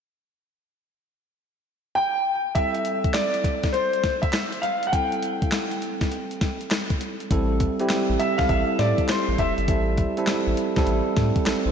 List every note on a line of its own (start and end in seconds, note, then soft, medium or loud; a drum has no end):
1.95 2.57 G5 medium
2.55 4.89 G3 medium
2.55 4.89 C4 medium
2.55 4.90 E4 medium
2.55 4.90 A4 medium
2.55 3.16 E5 medium
2.55 kick loud
2.55 closed hi-hat medium
2.75 closed hi-hat medium
2.85 closed hi-hat medium
3.04 kick medium
3.04 closed hi-hat soft
3.14 3.75 D5 medium
3.14 snare medium
3.14 clap medium
3.14 closed hi-hat medium
3.34 closed hi-hat soft
3.44 kick medium
3.44 closed hi-hat medium
3.63 kick medium
3.63 snare medium
3.63 closed hi-hat soft
3.73 4.19 C5 medium
3.73 closed hi-hat medium
3.93 closed hi-hat soft
4.04 kick medium
4.04 snare medium
4.04 closed hi-hat medium
4.22 4.64 E5 medium
4.22 kick loud
4.22 closed hi-hat soft
4.33 snare loud
4.33 clap medium
4.33 closed hi-hat medium
4.52 closed hi-hat soft
4.62 4.85 F5 medium
4.62 closed hi-hat medium
4.83 closed hi-hat medium
4.87 4.92 F#5 medium
4.92 7.26 G3 medium
4.92 7.27 C4 medium
4.92 7.27 E4 medium
4.92 7.27 A4 medium
4.92 6.97 G5 medium
4.92 kick loud
4.92 closed hi-hat medium
5.12 closed hi-hat medium
5.23 closed hi-hat medium
5.42 kick medium
5.42 closed hi-hat soft
5.52 snare loud
5.52 clap medium
5.52 closed hi-hat medium
5.71 closed hi-hat soft
5.82 closed hi-hat medium
6.01 kick medium
6.01 snare medium
6.01 closed hi-hat medium
6.11 closed hi-hat medium
6.31 closed hi-hat soft
6.41 kick medium
6.41 snare medium
6.41 closed hi-hat medium
6.61 closed hi-hat soft
6.71 snare loud
6.71 clap medium
6.71 closed hi-hat medium
6.90 kick medium
6.90 closed hi-hat soft
7.01 closed hi-hat medium
7.20 closed hi-hat soft
7.31 7.67 A1 loud
7.31 7.67 G3 medium
7.31 7.67 C4 medium
7.31 7.67 E4 medium
7.31 7.67 A4 medium
7.31 kick loud
7.31 closed hi-hat medium
7.60 kick medium
7.60 closed hi-hat medium
7.79 8.22 G3 medium
7.79 8.22 C4 medium
7.79 8.22 E4 medium
7.79 8.22 G4 medium
7.79 closed hi-hat soft
7.89 snare loud
7.89 clap medium
7.89 closed hi-hat medium
8.10 8.17 A1 medium
8.19 8.39 E5 medium
8.19 closed hi-hat medium
8.38 8.47 C2 medium
8.38 9.30 G3 medium
8.38 9.30 C4 medium
8.38 9.31 E4 medium
8.38 9.31 A4 medium
8.38 8.49 F5 loud
8.38 kick medium
8.38 snare medium
8.38 closed hi-hat soft
8.49 8.64 A1 loud
8.49 8.80 E5 loud
8.49 kick medium
8.49 closed hi-hat medium
8.79 8.93 A2 medium
8.79 9.07 D5 medium
8.79 snare medium
8.79 closed hi-hat medium
8.98 kick loud
8.98 closed hi-hat soft
9.09 9.40 C5 medium
9.09 snare loud
9.09 clap medium
9.09 closed hi-hat medium
9.28 9.36 A1 medium
9.38 9.53 F1 medium
9.38 10.54 E5 medium
9.38 kick medium
9.38 closed hi-hat medium
9.58 9.70 G1 medium
9.58 closed hi-hat soft
9.68 10.04 A1 loud
9.68 10.04 G3 medium
9.68 10.04 C4 medium
9.68 10.05 E4 medium
9.68 10.05 A4 medium
9.68 kick loud
9.68 closed hi-hat medium
9.97 kick medium
9.97 closed hi-hat medium
10.17 10.59 G3 medium
10.17 10.60 C4 medium
10.17 10.60 E4 medium
10.17 10.60 A4 medium
10.17 closed hi-hat soft
10.27 snare loud
10.27 clap medium
10.27 closed hi-hat medium
10.47 10.55 A1 medium
10.57 closed hi-hat medium
10.76 10.84 C2 medium
10.76 11.68 G3 medium
10.76 11.47 C4 medium
10.76 11.47 E4 medium
10.76 11.46 A4 medium
10.76 kick medium
10.76 snare medium
10.76 closed hi-hat soft
10.87 11.01 A1 loud
10.87 closed hi-hat medium
11.17 11.31 A2 medium
11.17 kick medium
11.17 snare medium
11.17 closed hi-hat medium
11.36 kick loud
11.36 closed hi-hat soft
11.46 11.54 A1 soft
11.46 11.65 C4 medium
11.46 11.65 A4 medium
11.46 snare loud
11.46 clap medium
11.46 closed hi-hat medium
11.66 11.72 A1 medium
11.66 11.72 E4 medium
11.66 11.72 C5 medium